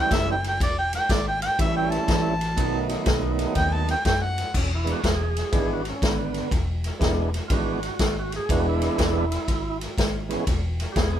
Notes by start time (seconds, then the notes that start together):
Already playing: E3 G3 A3 C#4 E4 G5
0.11 F#1 E5, kick, snare, ride
0.31 G5
0.44 G5, snare, ride
0.60 E1 D5, kick, snare, ride
0.79 G5
0.93 G5, snare, ride
1.09 G#1 D5, kick, snare, ride
1.28 G5
1.42 G5, snare, ride
1.59 A1 E3 G3 A3 C#4 E4 E5, kick, snare, ride
1.77 G5
1.92 A5, snare, ride
2.08 A1, kick, snare, ride
2.41 snare, ride
2.56 B1 D#3 F#3 A3 B3 D#4, kick, snare, ride
2.89 snare, ride
3.06 B1, kick, snare, ride
3.39 snare, ride
3.55 D#2 G5, kick, snare, ride
3.74 A5
3.88 G5, snare, ride
4.05 F#2 G5, kick, snare, ride
4.22 F#5
4.38 snare, ride
4.54 E1 C#4, kick, snare, crash
4.75 E4
4.84 E3 G#3 B3 D4, snare, ride
4.92 F#4
5.04 E1 G4, kick, snare, ride
5.09 G#4
5.36 snare, ride
5.52 G#1 E3 G#3 B3 D4, kick, snare, ride
5.73 F#4
5.85 snare, ride
5.89 C#4
6.02 G#1 D3 B3, kick, snare, ride
6.34 snare, ride
6.51 E1, kick, snare, ride
6.84 snare, ride
6.99 E1 E3 G#3 B3 D4, kick, snare, ride
7.34 snare, ride
7.48 G#1 E3 G#3 B3 D4 F4, kick, snare, ride
7.53 F#4
7.83 snare, ride
7.99 G#1, kick, snare, ride
8.19 F#4
8.32 G#4, snare, ride
8.49 E1 E3 G#3 B3 D4 F#4, kick, snare, ride
8.69 E4
8.82 E4, snare, ride
8.98 E1, kick, snare, ride
9.32 snare, ride
9.48 G#1, kick, snare, ride
9.81 snare, ride
9.98 G#1, kick, snare, ride
10.29 E3 G#3 B3 C#4, snare, ride
10.47 E1, kick, snare, ride
10.80 snare, ride
10.92 E1 G4, kick, ride
10.97 B3 G#4, snare
11.12 B3 G#4